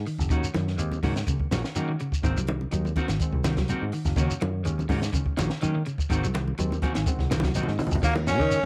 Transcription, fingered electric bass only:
0.19 0.28 F#1 medium
0.30 0.40 D#2 medium
0.55 0.79 F#2 medium
0.79 0.98 D#2 medium
1.03 1.22 G#2 medium
1.52 1.62 A#1 medium
1.76 1.95 D#3 medium
2.23 2.34 G#1 loud
2.37 2.65 C2 medium
2.72 2.91 D#2 medium
3.09 3.18 G#1 medium
3.33 3.71 C2 medium
3.82 3.91 G#2 medium
4.05 4.15 F#1 medium
4.16 4.27 D#2 loud
4.42 4.66 F#2 medium
4.66 4.85 D#2 medium
4.89 5.08 G#2 medium
5.39 5.49 A#1 medium
5.63 5.82 D#3 medium
6.10 6.20 G#1 loud
6.24 6.52 C2 medium
6.59 6.78 D#2 medium
6.96 7.05 G#1 medium
7.19 7.57 C2 medium
7.68 7.77 G#2 medium
7.92 8.01 F#1 medium
8.03 8.39 D#2 loud
8.39 8.58 D#3 medium

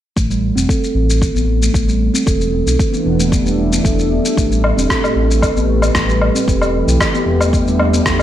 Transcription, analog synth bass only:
0.16 0.51 A1 medium
0.56 0.66 E1 medium
0.95 1.30 A1 medium
1.35 1.70 A1 medium
1.74 2.09 A1 medium
2.27 2.62 E1 medium
2.67 2.76 B1 medium
3.05 3.40 E1 medium
3.45 3.80 E1 medium
3.84 4.20 E1 medium
4.37 4.72 A1 medium
4.77 4.87 E1 medium
5.16 5.51 A1 loud
5.56 5.90 A1 medium
5.95 6.30 A1 medium
6.47 6.83 E1 medium
6.87 6.97 B1 medium
7.26 7.61 E1 medium
7.66 8.01 E1 medium
8.05 8.23 E1 medium

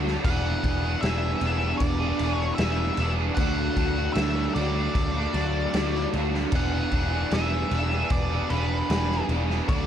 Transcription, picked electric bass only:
0.00 0.16 D2 loud
0.25 0.55 E1 loud
0.63 0.94 E1 medium
1.03 1.33 E1 loud
1.41 1.72 E1 loud
1.80 2.11 E1 medium
2.20 2.51 E1 medium
2.59 2.90 E1 loud
2.98 3.29 E1 loud
3.37 3.68 D2 medium
3.77 4.08 D2 medium
4.16 4.47 D2 medium
4.56 4.87 D2 medium
4.95 5.26 D2 medium
5.34 5.65 D2 medium
5.75 6.05 D2 medium
6.14 6.45 D2 medium
6.53 6.84 E1 medium
6.92 7.23 E1 medium
7.32 7.63 E1 medium
7.72 8.02 E1 loud
8.11 8.42 E1 medium
8.51 8.82 E1 medium
8.90 9.21 E1 medium
9.29 9.60 E1 medium
9.69 9.87 D2 loud

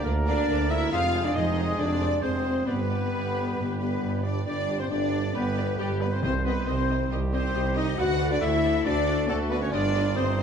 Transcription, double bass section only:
0.05 0.44 D2 medium
0.49 0.87 D2 loud
0.92 1.31 F2 loud
1.36 1.74 F2 medium
1.79 2.18 F2 medium
2.23 2.62 F2 medium
2.67 3.07 G2 medium
3.12 3.51 G2 medium
3.56 3.96 G2 medium
4.01 4.41 G2 medium
4.46 4.85 G2 medium
4.90 5.29 G2 medium
5.34 5.73 G2 medium
5.78 6.17 G2 medium
6.23 6.61 C2 medium
6.66 7.05 C2 medium
7.10 7.49 C2 medium
7.55 7.93 C2 medium
7.98 8.36 D2 loud
8.41 8.80 D2 loud
8.85 9.23 D2 loud
9.28 9.67 D2 loud
9.72 10.11 G1 loud
10.17 10.43 G1 medium

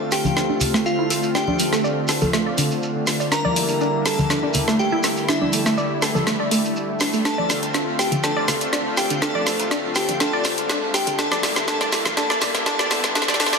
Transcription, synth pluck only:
0.25 0.36 D3 medium
0.37 0.45 D4 medium
0.50 0.54 D4 medium
0.74 0.85 A3 loud
0.99 1.03 E4 medium
1.10 1.15 A4 medium
1.35 1.43 D4 medium
1.48 1.52 D4 medium
1.60 1.64 A3 medium
1.73 1.83 A3 loud
1.84 1.92 D5 medium
2.09 2.14 A4 medium
2.22 2.32 A4 medium
2.33 2.45 A3 medium
2.46 2.53 D5 medium
2.58 2.70 D3 medium
3.20 3.27 D5 medium
3.32 3.37 D4 medium
3.45 3.52 D5 loud
3.81 3.86 D4 medium
4.19 4.29 D3 medium
4.30 4.38 D4 medium
4.43 4.47 D4 medium
4.68 4.78 A3 loud
4.92 4.97 E4 loud
5.04 5.09 A4 medium
5.29 5.36 D4 medium
5.42 5.46 D4 medium
5.53 5.58 A3 medium
5.66 5.77 A3 loud
5.78 5.86 D5 medium
6.02 6.07 A4 medium
6.15 6.26 A4 medium
6.27 6.39 A3 medium
6.40 6.47 D5 medium
6.51 6.63 A3 medium
7.01 7.09 D4 medium
7.14 7.21 A3 medium
7.25 7.30 D4 medium
7.38 7.45 D5 medium
7.74 7.79 D4 medium
8.12 8.22 D3 medium
8.24 8.28 D4 medium
8.37 8.44 D5 loud
8.73 8.78 D4 medium
9.10 9.20 D3 medium
9.22 9.27 D4 medium
9.35 9.42 D5 loud
9.71 9.76 D4 medium
10.09 10.18 D3 medium
10.20 10.25 D4 medium
10.33 10.40 D5 loud
10.69 10.74 D4 medium
11.07 11.17 D3 medium
11.19 11.23 D4 medium
11.32 11.39 D5 loud
11.68 11.73 D4 medium
11.81 11.88 D5 loud
12.17 12.22 D4 medium
12.30 12.37 D5 loud
12.66 12.71 D4 medium
12.79 12.86 D5 loud
13.15 13.20 D4 medium
13.28 13.35 D5 loud
13.40 13.45 D4 medium
13.53 13.59 D5 loud

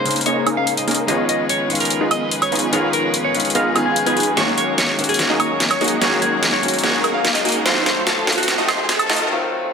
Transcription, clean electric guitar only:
0.00 0.19 C5 medium
0.26 0.50 C#5 medium
0.57 0.73 F5 medium
0.78 1.01 D#5 medium
1.08 1.24 D#5 loud
1.29 1.45 D#5 medium
1.50 1.73 C#5 medium
1.81 2.04 A#4 medium
2.11 2.35 D#5 medium
2.43 2.66 C#5 medium
2.73 2.89 A#4 medium
2.94 3.17 A#4 medium
3.25 3.48 C#5 medium
3.55 3.79 A#4 medium
3.86 4.01 G#4 medium
4.06 4.30 G#4 medium
4.37 4.53 C#5 loud
4.58 4.73 C#5 medium
4.78 5.02 C#5 medium
5.09 5.33 G#4 loud
5.40 5.63 C#5 loud
5.71 5.94 C#5 medium
6.02 6.17 G#4 medium
6.22 6.45 G#4 medium
6.53 6.76 C#5 medium
6.83 7.07 C#5 medium
7.14 7.30 F5 medium
7.35 7.58 D#5 medium
7.66 7.81 C5 loud
7.86 8.02 C5 medium
8.07 8.30 A4 medium
8.38 8.61 F#4 loud
8.68 8.92 C5 loud
8.99 9.23 A4 loud

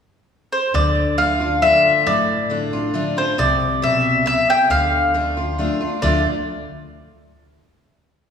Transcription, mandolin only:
0.53 0.74 C5 medium
0.75 1.15 D5 medium
1.18 1.62 F5 medium
1.62 2.07 E5 medium
2.07 3.13 D5 medium
3.18 3.37 C5 medium
3.39 3.84 D5 loud
3.83 4.26 E5 medium
4.27 4.49 E5 loud
4.50 4.69 G5 loud
4.71 5.55 F5 loud
6.02 6.24 D5 medium

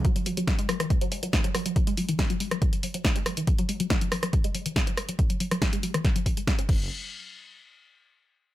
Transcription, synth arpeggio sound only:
0.05 0.09 F#3 loud
0.16 0.20 F#3 medium
0.26 0.31 F#3 medium
0.37 0.43 F#3 medium
0.48 0.54 F#3 medium
0.59 0.61 G#3 loud
0.69 0.73 F#3 medium
0.80 0.84 E3 medium
0.90 0.93 F#3 medium
1.01 1.06 F#3 loud
1.12 1.18 G#3 medium
1.23 1.29 F#3 medium
1.33 1.38 F#3 loud
1.44 1.48 F#3 medium
1.55 1.59 F#3 medium
1.66 1.72 F#3 medium
1.76 1.83 F#3 medium
1.87 1.90 G#3 loud
1.97 2.02 F#3 medium
2.09 2.13 E3 medium
2.19 2.22 F#3 medium
2.30 2.34 F#3 loud
2.40 2.47 G#3 medium
2.51 2.58 F#3 medium
2.62 2.66 F#3 loud
2.73 2.77 F#3 medium
2.83 2.88 F#3 medium
2.94 3.01 F#3 medium
3.05 3.11 F#3 medium
3.16 3.18 G#3 loud
3.26 3.31 F#3 medium
3.37 3.41 E3 medium
3.47 3.50 F#3 medium
3.59 3.63 F#3 loud
3.69 3.76 G#3 medium
3.80 3.86 F#3 medium
3.90 3.95 F#3 loud
4.01 4.06 F#3 medium
4.12 4.16 F#3 medium
4.23 4.29 F#3 medium
4.33 4.40 F#3 medium
4.44 4.47 G#3 loud
4.55 4.59 F#3 medium
4.66 4.70 E3 medium
4.76 4.79 F#3 medium
4.87 4.91 F#3 loud
4.97 5.04 G#3 medium
5.09 5.15 F#3 medium
5.19 5.23 F#3 loud
5.30 5.34 F#3 medium
5.40 5.45 F#3 medium
5.51 5.58 F#3 medium
5.62 5.68 F#3 medium
5.73 5.75 G#3 loud
5.83 5.88 F#3 medium
5.94 5.98 E3 medium
6.04 6.07 F#3 medium
6.16 6.20 F#3 loud
6.26 6.29 F#3 medium
6.37 6.40 G#3 medium
6.47 6.50 A3 medium
6.59 6.61 C#4 loud
6.69 6.89 F#3 medium

